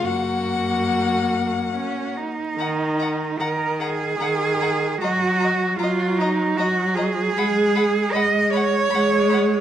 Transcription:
<<
  \new Staff \with { instrumentName = "Violin" } { \time 3/4 \key fis \major \tempo 4 = 75 fis''2~ fis''8 r8 | \key ees \minor bes''8 bes''8 bes''8 bes''8 bes''8 bes''8 | bes''8 bes''8 bes''8 bes''8 bes''8 bes''8 | ces'''8 ces'''8 ces'''8 ces'''8 ces'''8 ces'''8 | }
  \new Staff \with { instrumentName = "Violin" } { \time 3/4 \key fis \major fis'2~ fis'8 r8 | \key ees \minor ges''8 ges''8 ges''8 ges''8 ges''8 ges''8 | ees''8 ees''8 ees''8 ees''8 ees''8 ees''8 | ges''8 ges''8 ges''8 ges''8 ges''8 ges''8 | }
  \new Staff \with { instrumentName = "Cello" } { \time 3/4 \key fis \major fis,2 cis'8 dis'8~ | \key ees \minor dis'4 bes'8 aes'4. | ges'4 f'8 ees'8 ges'8 aes'8~ | aes'4 ees''8 des''4. | }
  \new Staff \with { instrumentName = "Viola" } { \clef bass \time 3/4 \key fis \major ais2~ ais8. r16 | \key ees \minor ees4 ees4 ees4 | ges4 ges4 ges4 | aes4 aes4 aes4 | }
>>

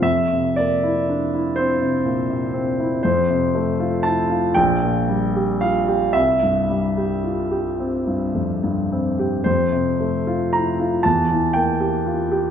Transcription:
<<
  \new Staff \with { instrumentName = "Grand piano" } { \time 6/8 \key c \mixolydian \tempo 4. = 38 e''8 d''4 c''4. | c''4 a''8 g''4 f''8 | e''2~ e''8 r8 | c''4 bes''8 a''8 g''4 | }
  \new Staff \with { instrumentName = "Grand piano" } { \time 6/8 \key c \mixolydian f,16 c16 bes16 e'16 d'16 e'16 c'16 c16 bes,16 c16 c'16 e'16 | f,16 c16 a16 f'16 e'16 f'16 bes,,16 bes,16 g16 g'16 f'16 g'16 | c,16 g,16 g16 g'16 f'16 g'16 c'16 g,16 f,16 g,16 c'16 g'16 | f,16 c16 a16 f'16 e'16 f'16 e,16 e16 bes16 g'16 f'16 g'16 | }
>>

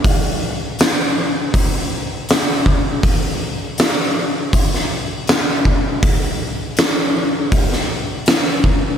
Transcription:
\new DrumStaff \with { instrumentName = "Drums" } \drummode { \time 4/4 \tempo 4 = 80 <hho bd>4 <hho sn>4 <hho bd>4 <hho sn>8 bd8 | <hho bd>4 <hho sn>4 <hho bd>16 sn8. <hho sn>8 bd8 | <hho bd>4 <hho sn>4 <hho bd>16 sn8. <hho sn>8 bd8 | }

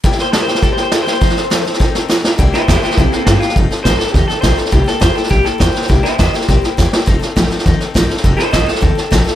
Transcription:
<<
  \new Staff \with { instrumentName = "Clean electric guitar" } { \time 4/4 \key c \mixolydian \tempo 4 = 205 \tuplet 3/2 { r4 c''8 a'8 c''8 c''8 a'8 c''8 c''8 a'8 c''8 c''8~ } | c''2~ c''8 r4. | r8 <e' c''>8 <e' c''>8 <e' c''>8 <c' a'>8 <c' a'>8 <c' a'>8 f'8 | r4 c''8 a'8 g'8 a'8 c''8 a'8 |
g'8 a'8 c''8 a'8 g'8 a'8 c''4 | r8 <e' c''>8 <c'' ees''>8 c''2~ c''8~ | c''8 r2. r8 | r8 <a' c''>8 <c'' ees''>8 a'2~ a'8 | }
  \new Staff \with { instrumentName = "Steel-string acoustic guitar" } { \time 4/4 \key c \mixolydian <c g bes e' g'>8 <bes e' g'>8 <g bes e' g'>8 <bes e' g'>8 <c g bes e' g'>8 <bes e' g'>8 <g bes e' g'>8 <bes e' g'>8 | <f c' ees' a'>8 <c' ees' a'>8 <f c' ees' a'>8 <c' ees' a'>8 <f c' ees' a'>8 <c' ees' a'>8 <f c' ees' a'>8 <c' ees' a'>8 | <c g bes e' g'>8 <bes e' g'>8 <g bes e' g'>8 <bes e' g'>8 <c g bes e' g'>8 <bes e' g'>8 <g bes e' g'>8 <bes e' g'>8 | <f c' ees' a'>8 <c' ees' a'>8 <f c' ees' a'>8 <c' ees' a'>8 <f c' ees' a'>8 <c' ees' a'>8 <f c' ees' a'>8 <c' ees' a'>8 |
<c g bes e' g'>8 <bes e' g'>8 <g bes e' g'>8 <bes e' g'>8 <c g bes e' g'>8 <bes e' g'>8 <g bes e' g'>8 <bes e' g'>8 | <c g bes e' g'>8 <bes e' g'>8 <g bes e' g'>8 <bes e' g'>8 <c g bes e' g'>8 <bes e' g'>8 <g bes e' g'>8 <bes e' g'>8 | <f c' ees' a'>8 <c' ees' a'>8 <f c' ees' a'>8 <c' ees' a'>8 <f c' ees' a'>8 <c' ees' a'>8 <f c' ees' a'>8 <c' ees' a'>8 | <f c' ees' a'>8 <c' ees' a'>8 <f c' ees' a'>8 <c' ees' a'>8 <f c' ees' a'>8 <c' ees' a'>8 <f c' ees' a'>8 <c' ees' a'>8 | }
  \new Staff \with { instrumentName = "Upright bass" } { \clef bass \time 4/4 \key c \mixolydian r1 | r1 | c,8 r8 e,8 r8 bes,,8 r8 g,8 r8 | f,,8 r8 a,,8 r8 ees,8 r8 bes,,8 r8 |
c,8 r8 e,8 r8 bes,,8 r8 e,8 r8 | c,8 r8 e,8 r8 bes,,8 r8 e,8 r8 | f,,8 r8 a,,8 r8 ees,8 r8 a,,8 r8 | f,,8 r8 a,,8 r8 ees,8 r8 bes,,8 r8 | }
  \new DrumStaff \with { instrumentName = "Drums" } \drummode { \time 4/4 <bd sn>16 sn16 sn8 <hhp sn>8 sn16 sn16 <bd sn>8 sn8 <hhp sn>8 sn8 | <bd sn>16 sn16 sn8 <hhp sn>8 sn16 sn16 <bd sn>8 sn8 <hhp sn>8 sn8 | <bd sn>8 sn8 <hhp bd sn>8 sn16 sn16 <bd sn>8 sn8 <hhp bd sn>8 sn16 sn16 | <bd sn>8 sn8 <hhp bd sn>8 sn16 sn16 <bd sn>8 sn8 <hhp bd sn>8 sn16 sn16 |
<bd sn>8 sn8 <hhp bd sn>8 sn16 sn16 <bd sn>8 sn8 <hhp bd sn>8 sn16 sn16 | <bd sn>8 sn8 <hhp bd sn>8 sn16 sn16 <bd sn>8 sn8 <hhp bd sn>8 sn8 | <bd sn>8 sn8 <hhp bd sn>8 sn16 sn16 <bd sn>8 sn8 <hhp bd sn>8 sn16 sn16 | <bd sn>8 sn8 <hhp bd sn>8 sn16 sn16 <bd sn>8 sn8 <hhp bd sn>8 sn8 | }
>>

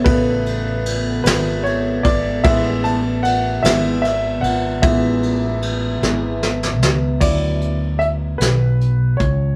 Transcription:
<<
  \new Staff \with { instrumentName = "Glass harmonica" } { \time 6/8 \key cis \phrygian \tempo 4. = 50 << { <b b' e'' a''>2.~ | <b b' e'' a''>2.~ | <b b' e'' a''>2. | r2. | } \\ { a'2. | r2. | r2. | r2. | } >> }
  \new Staff \with { instrumentName = "Grand piano" } { \time 6/8 \key cis \phrygian b'4. b'8 cis''8 d''8 | e''8 a''8 fis''8 e''8 e''8 fis''8 | e''2~ e''8 r8 | d''4 e''8 b'4 cis''8 | }
  \new Staff \with { instrumentName = "Grand piano" } { \clef bass \time 6/8 \key cis \phrygian <cis a b>2. | <e gis b>8 r4 <e gis b>8 r4 | <e gis b>4. <e gis b>8 r4 | <fis d' e'>4. r4. | }
  \new Staff \with { instrumentName = "Fretless electric bass" } { \clef bass \time 6/8 \key cis \phrygian a,,4. gis,,4 gis,,8 | a,,4. gis,,4 gis,,8 | a,,4. gis,,4 cis,8 | d,4. b,,4 cis,8 | }
  \new DrumStaff \with { instrumentName = "Drums" } \drummode { \time 6/8 <bd cymr>8 cymr8 cymr8 <cymr sn>8 cymr8 <bd cymr>8 | <bd cymr>8 cymr8 cymr8 <cymr sn>8 <cymr sn>8 cymr8 | <bd cymr>8 cymr8 cymr8 sn8 sn16 sn16 sn8 | <cymc bd>8 hh8 hh8 <hh sn>8 hh8 <hh bd>8 | }
>>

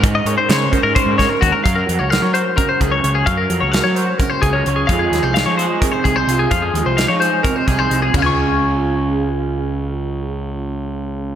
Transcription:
<<
  \new Staff \with { instrumentName = "Clean electric guitar" } { \time 7/8 \key des \major \tempo 4 = 129 r16 ees''16 des''16 c''16 des''8 c''16 bes'16 c''8 des''16 bes'16 ges'16 bes'16 | f''16 bes'8 des''16 f''16 des''16 c''8 bes'16 c''16 aes'16 des''8 aes'16 | f''16 bes'8 des''16 f''16 des''16 c''8 bes'16 c''16 aes'16 des''8 aes'16 | f''16 aes'8 c''16 f''16 des''16 c''8 bes'16 c''16 aes'16 c''8 aes'16 |
f''16 aes'8 c''16 f''16 des''16 c''8 bes'16 c''16 aes'16 c''8 aes'16 | <f'' aes'' des'''>2.~ <f'' aes'' des'''>8~ | <f'' aes'' des'''>2.~ <f'' aes'' des'''>8 | }
  \new Staff \with { instrumentName = "Clean electric guitar" } { \time 7/8 \key des \major << { r8 bes'8 c''8 bes'8 des''8 bes'4 | r4 bes'8 des''4 bes'8 des''8 | r4 bes'8 des''4 aes'16 bes'16 des''8 | <aes ees' f' aes'>4 ees'8 aes'4 aes'8 f'8 |
r4 ees'8 aes'4 aes'8 ees'16 f'16 | <des' f' aes'>2.~ <des' f' aes'>8~ | <des' f' aes'>2.~ <des' f' aes'>8 | } \\ { aes,4. des'4 aes,4 | ges8 ges'4. des4. | ges8 ges'4. des4. | f8 aes4. c4. |
f8 aes4. c4. | des2.~ des8~ | des2.~ des8 | } >> }
  \new Staff \with { instrumentName = "Picked electric bass" } { \clef bass \time 7/8 \key des \major aes,8 aes,16 r16 des8 r16 aes,16 r16 aes,8 r16 ees,16 r16 | ges,8 f,16 des,8 ges8 r8. des,8 des,8 | ges,8 f,16 des,8 ges8 r8. des,8 des,8 | f,8 ees,16 c,8 f8 r8. c,8 c,8 |
f,8 ees,16 c,8 f8 r8. c,8 c,8 | des,2.~ des,8~ | des,2.~ des,8 | }
  \new DrumStaff \with { instrumentName = "Drums" } \drummode { \time 7/8 <hh bd>8 hh8 <hh sn>8 <hh bd>8 <hh bd>8 <hh bd sn>8 <hh bd>8 | <hh bd>8 hh8 <hh sn>8 hh8 <hh bd>8 <hh bd>8 hh8 | <hh bd>8 hh8 <hh sn>8 hh8 <hh bd>8 <hh bd>8 hh8 | <hh bd>8 <hh sn>8 <hh sn>8 hh8 <hh bd>8 <hh bd>8 hh8 |
<hh bd>8 hh8 <hh sn>8 hh8 <hh bd>8 <hh bd>8 hh8 | <cymc bd tomfh>4 r4 r4. | r4 r4 r4. | }
>>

